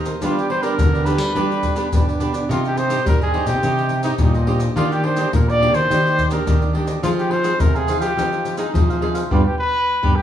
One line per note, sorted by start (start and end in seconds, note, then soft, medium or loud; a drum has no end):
0.00 0.20 D#3 medium
0.00 0.17 A#3 medium
0.00 0.18 C4 medium
0.00 0.18 G4 medium
0.05 0.21 A#4 soft
0.05 0.20 C5 soft
0.05 0.20 D#5 soft
0.05 pandeiro medium
0.05 maracas medium
0.22 0.76 G3 medium
0.22 0.49 B3 medium
0.22 0.48 D4 medium
0.22 0.49 D4 medium
0.22 0.37 F4 medium
0.22 0.49 G4 medium
0.22 0.49 B4 medium
0.22 0.51 D5 medium
0.22 pandeiro medium
0.22 maracas medium
0.22 surdo medium
0.38 0.50 G4 medium
0.38 pandeiro soft
0.38 maracas soft
0.49 0.61 D4 soft
0.49 0.62 G4 soft
0.49 0.62 B4 soft
0.49 0.64 C5 medium
0.49 0.62 D5 medium
0.49 pandeiro medium
0.62 1.02 B3 medium
0.62 0.73 D4 medium
0.62 1.02 D4 medium
0.62 0.73 G4 medium
0.62 1.02 G4 medium
0.62 1.07 A#4 loud
0.62 0.73 B4 medium
0.62 0.73 D5 medium
0.62 pandeiro medium
0.62 maracas medium
0.78 1.33 D3 medium
0.78 pandeiro medium
0.78 maracas medium
0.78 surdo loud
0.93 1.05 G4 soft
0.93 1.06 B4 soft
0.93 1.06 D5 soft
0.93 pandeiro soft
0.93 maracas soft
1.05 1.23 B3 soft
1.05 1.19 D4 medium
1.05 1.24 D4 medium
1.05 1.19 G4 medium
1.05 1.24 G4 medium
1.05 2.20 B4 medium
1.05 1.18 B4 medium
1.05 1.17 D5 medium
1.05 pandeiro medium
1.05 maracas medium
1.18 1.32 G3 medium
1.18 1.34 G4 soft
1.18 1.34 B4 soft
1.18 1.33 D5 soft
1.18 pandeiro medium
1.18 maracas medium
1.35 1.90 G3 soft
1.35 1.62 B3 soft
1.35 1.75 D4 medium
1.35 1.62 D4 soft
1.35 1.63 G4 medium
1.35 1.76 G4 medium
1.35 1.76 B4 medium
1.35 1.76 D5 medium
1.35 pandeiro medium
1.35 maracas medium
1.35 surdo medium
1.51 pandeiro soft
1.51 maracas soft
1.63 pandeiro medium
1.63 maracas medium
1.63 surdo medium
1.75 2.15 B3 medium
1.75 2.15 D4 medium
1.75 1.86 D4 medium
1.75 2.15 G4 medium
1.75 1.87 G4 medium
1.75 1.87 B4 medium
1.75 1.87 D5 medium
1.75 pandeiro medium
1.75 maracas medium
1.92 2.18 G2 medium
1.92 2.46 D3 medium
1.92 2.05 D4 soft
1.92 2.06 G4 soft
1.92 2.06 B4 soft
1.92 2.06 D5 soft
1.92 pandeiro medium
1.92 maracas medium
1.92 surdo loud
2.07 2.19 G4 soft
2.07 2.20 B4 soft
2.07 2.20 D5 soft
2.07 pandeiro soft
2.07 maracas soft
2.20 2.46 B2 medium
2.20 2.45 B3 medium
2.20 2.34 D4 medium
2.20 2.45 D4 medium
2.20 2.34 G4 medium
2.20 2.45 G4 medium
2.20 2.33 B4 medium
2.20 2.31 D5 medium
2.20 pandeiro medium
2.20 maracas medium
2.33 2.48 G4 soft
2.33 2.48 B4 soft
2.33 2.47 D5 soft
2.33 pandeiro medium
2.33 maracas medium
2.49 3.03 C3 medium
2.49 2.88 C4 medium
2.49 2.76 D#4 medium
2.49 2.88 D#4 medium
2.49 2.63 F4 medium
2.49 2.77 G4 medium
2.49 2.88 G4 medium
2.49 2.77 C5 medium
2.49 2.77 D#5 medium
2.49 pandeiro medium
2.49 maracas medium
2.49 surdo medium
2.65 2.79 G4 medium
2.65 pandeiro soft
2.65 maracas soft
2.77 2.89 D#4 soft
2.77 2.89 G4 soft
2.77 3.06 C5 medium
2.77 2.90 C5 medium
2.77 2.90 D#5 medium
2.77 pandeiro medium
2.77 maracas medium
2.90 3.29 C4 medium
2.90 3.00 D#4 medium
2.90 3.29 D#4 medium
2.90 3.00 G4 medium
2.90 3.29 G4 medium
2.90 3.00 C5 medium
2.90 3.01 D#5 medium
2.90 pandeiro medium
2.90 maracas medium
3.06 3.60 G2 medium
3.06 3.49 G3 medium
3.06 3.20 A#4 medium
3.06 pandeiro medium
3.06 maracas medium
3.06 surdo loud
3.21 3.33 G4 soft
3.21 3.48 G#4 medium
3.21 3.34 C5 soft
3.21 3.34 D#5 soft
3.21 pandeiro soft
3.21 maracas soft
3.33 3.51 C4 medium
3.33 3.47 D#4 medium
3.33 3.51 D#4 medium
3.33 3.47 G4 medium
3.33 3.51 G4 medium
3.33 3.47 C5 medium
3.33 3.46 D#5 medium
3.33 pandeiro medium
3.46 3.59 C3 medium
3.46 4.03 G4 medium
3.46 3.62 G4 soft
3.46 3.62 C5 soft
3.46 3.61 D#5 soft
3.46 pandeiro medium
3.46 maracas medium
3.63 4.17 C3 soft
3.63 3.90 C4 medium
3.63 4.03 D#4 medium
3.63 3.90 D#4 medium
3.63 4.03 G4 medium
3.63 3.90 G4 medium
3.63 4.04 C5 medium
3.63 4.04 D#5 medium
3.63 pandeiro medium
3.63 maracas medium
3.63 surdo medium
3.78 pandeiro soft
3.78 maracas soft
3.89 pandeiro medium
3.89 maracas medium
4.03 4.43 C4 medium
4.03 4.14 D#4 medium
4.03 4.44 D#4 medium
4.03 4.43 D#4 medium
4.03 4.43 G4 medium
4.03 4.14 G4 medium
4.03 4.14 C5 medium
4.03 4.14 D#5 medium
4.03 pandeiro medium
4.03 maracas medium
4.18 4.74 G2 medium
4.18 4.68 A#2 medium
4.18 4.33 D#4 soft
4.18 4.33 G4 soft
4.18 4.34 C5 soft
4.18 4.34 D#5 soft
4.18 pandeiro medium
4.18 maracas medium
4.18 surdo loud
4.34 4.46 G4 soft
4.34 4.47 C5 soft
4.34 4.48 D#5 soft
4.34 pandeiro soft
4.34 maracas soft
4.46 4.64 C4 medium
4.46 4.60 D#4 medium
4.46 4.64 D#4 medium
4.46 4.60 G4 medium
4.46 4.64 G4 medium
4.46 4.60 C5 medium
4.46 4.59 D#5 medium
4.46 pandeiro medium
4.60 4.75 G4 soft
4.60 4.75 C5 soft
4.60 4.74 D#5 soft
4.60 pandeiro medium
4.60 maracas medium
4.76 5.31 D#3 medium
4.76 5.03 A#3 medium
4.76 5.03 D4 medium
4.76 5.04 D4 medium
4.76 4.94 F4 medium
4.76 5.03 G4 medium
4.76 5.04 G4 medium
4.76 5.05 D5 medium
4.76 5.04 D#5 medium
4.76 pandeiro medium
4.76 maracas medium
4.76 surdo medium
4.92 5.07 G4 medium
4.92 pandeiro soft
4.92 maracas soft
5.04 5.17 D4 soft
5.04 5.17 G4 medium
5.04 5.33 C5 medium
5.04 5.18 D5 medium
5.04 5.17 D#5 soft
5.04 pandeiro medium
5.16 5.56 A#3 medium
5.16 5.56 D4 medium
5.16 5.28 D4 medium
5.16 5.57 G4 medium
5.16 5.28 G4 medium
5.16 5.28 D5 medium
5.16 5.28 D#5 medium
5.16 pandeiro medium
5.16 maracas medium
5.33 5.88 A#2 medium
5.33 5.52 A#4 medium
5.33 pandeiro medium
5.33 maracas medium
5.33 surdo loud
5.48 5.59 G4 soft
5.48 5.60 D5 soft
5.48 5.76 D5 loud
5.48 5.59 D#5 soft
5.48 pandeiro soft
5.48 maracas soft
5.59 5.78 A#3 medium
5.59 5.73 D4 medium
5.59 5.78 D4 medium
5.59 5.73 G4 medium
5.59 5.78 G4 medium
5.59 5.72 D5 medium
5.59 5.73 D#5 medium
5.59 pandeiro medium
5.73 5.87 D#3 medium
5.73 5.88 G4 soft
5.73 6.31 C5 medium
5.73 5.87 D5 soft
5.73 5.88 D#5 soft
5.73 pandeiro medium
5.73 maracas medium
5.90 6.44 D#3 medium
5.90 6.28 A#3 medium
5.90 6.30 G4 medium
5.90 6.29 G4 medium
5.90 6.30 D5 medium
5.90 6.30 D#5 medium
5.90 pandeiro medium
5.90 maracas medium
5.90 surdo medium
6.07 pandeiro soft
6.07 maracas soft
6.19 pandeiro medium
6.19 maracas medium
6.19 surdo medium
6.30 6.70 A#3 medium
6.30 6.40 D4 medium
6.30 6.70 D4 medium
6.30 6.41 G4 medium
6.30 6.71 G4 medium
6.30 6.72 A#4 medium
6.30 6.41 D5 medium
6.30 6.41 D#5 medium
6.30 pandeiro medium
6.30 maracas medium
6.46 7.01 A#2 medium
6.46 6.95 D#3 medium
6.46 6.59 D4 soft
6.46 6.60 G4 soft
6.46 6.59 D5 soft
6.46 6.60 D#5 soft
6.46 pandeiro medium
6.46 maracas medium
6.46 surdo loud
6.61 6.72 G4 soft
6.61 6.74 D5 soft
6.61 6.73 D#5 soft
6.61 pandeiro soft
6.61 maracas soft
6.73 6.99 A#3 medium
6.73 6.87 D4 medium
6.73 7.00 D4 medium
6.73 6.87 G4 medium
6.73 7.00 G4 medium
6.73 6.85 D5 medium
6.73 6.86 D#5 medium
6.73 pandeiro medium
6.86 7.02 G4 soft
6.86 7.01 D5 soft
6.86 7.01 D#5 soft
6.86 pandeiro medium
6.86 maracas medium
7.03 7.58 F3 medium
7.03 7.43 C4 medium
7.03 7.30 D#4 medium
7.03 7.43 D#4 medium
7.03 7.10 F4 medium
7.03 7.30 G#4 medium
7.03 7.43 G#4 medium
7.03 7.31 C5 medium
7.03 7.32 F5 medium
7.03 pandeiro medium
7.03 maracas medium
7.03 surdo medium
7.18 7.33 G4 medium
7.18 pandeiro soft
7.18 maracas soft
7.31 7.42 D#4 soft
7.31 7.43 G#4 medium
7.31 7.62 C5 medium
7.31 7.43 C5 medium
7.31 7.44 F5 medium
7.31 pandeiro medium
7.43 7.84 C4 medium
7.43 7.54 D#4 medium
7.43 7.84 D#4 medium
7.43 7.54 G#4 medium
7.43 7.84 G#4 medium
7.43 7.55 C5 medium
7.43 7.55 F5 medium
7.43 pandeiro medium
7.43 maracas medium
7.60 8.15 C3 medium
7.60 7.77 A#4 medium
7.60 pandeiro medium
7.60 maracas medium
7.60 surdo loud
7.75 8.00 G#4 medium
7.75 7.87 G#4 soft
7.75 7.87 C5 soft
7.75 7.88 F5 soft
7.75 pandeiro soft
7.75 maracas soft
7.87 8.06 C4 medium
7.87 8.01 D#4 medium
7.87 8.06 D#4 medium
7.87 8.02 G#4 medium
7.87 8.06 G#4 medium
7.87 8.00 C5 medium
7.87 7.99 F5 medium
7.87 pandeiro medium
7.87 maracas medium
8.00 8.14 F3 medium
8.00 8.55 G4 medium
8.00 8.16 G#4 soft
8.00 8.15 C5 soft
8.00 8.15 F5 soft
8.00 pandeiro medium
8.00 maracas medium
8.17 8.72 F3 medium
8.17 8.56 C4 soft
8.17 8.56 D#4 medium
8.17 8.57 C5 medium
8.17 8.57 F5 medium
8.17 pandeiro medium
8.17 maracas medium
8.17 surdo medium
8.33 pandeiro soft
8.33 maracas soft
8.45 pandeiro medium
8.45 maracas medium
8.57 8.97 C4 medium
8.57 8.68 D#4 medium
8.57 8.97 D#4 medium
8.57 8.99 D#4 medium
8.57 8.68 G#4 medium
8.57 8.97 G#4 medium
8.57 8.68 C5 medium
8.57 8.68 F5 medium
8.57 pandeiro medium
8.57 maracas medium
8.74 9.28 C3 medium
8.74 9.22 F3 medium
8.74 8.87 D#4 soft
8.74 8.88 G#4 soft
8.74 8.88 C5 soft
8.74 8.88 F5 soft
8.74 pandeiro medium
8.74 maracas medium
8.74 surdo loud
8.90 9.01 G#4 soft
8.90 9.02 C5 soft
8.90 9.02 F5 soft
8.90 pandeiro soft
8.90 maracas soft
9.01 9.19 C4 soft
9.01 9.19 D#4 medium
9.01 9.15 D#4 medium
9.01 9.19 G#4 medium
9.01 9.16 G#4 medium
9.01 9.14 C5 medium
9.01 9.13 F5 medium
9.01 pandeiro medium
9.14 9.30 G#4 soft
9.14 9.29 C5 soft
9.14 9.29 F5 soft
9.14 pandeiro medium
9.14 maracas medium
9.31 9.42 G2 medium
9.31 9.40 G3 medium
9.31 9.40 B3 medium
9.31 9.40 D4 medium
9.31 9.47 F4 medium
9.31 9.41 G4 medium
9.31 9.41 B4 medium
9.31 9.41 D5 medium
9.31 surdo loud
9.46 9.58 G4 medium
9.59 10.17 B4 loud
10.03 10.13 G2 loud
10.03 10.12 G3 medium
10.03 10.12 B3 medium
10.03 10.12 D4 medium
10.03 10.12 G4 medium
10.03 10.12 B4 medium
10.03 10.12 D5 medium
10.03 surdo medium
10.16 10.22 G4 medium